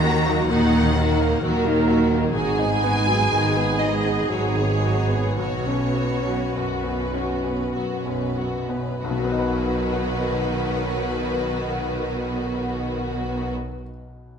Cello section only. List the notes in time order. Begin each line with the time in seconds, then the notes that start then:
Already playing: D#3
0.49 D#3
1.42 D#3
2.34 G#2
3.31 G#2
4.31 G#2
5.38 B2
6.53 B2
7.72 B2
9.02 B2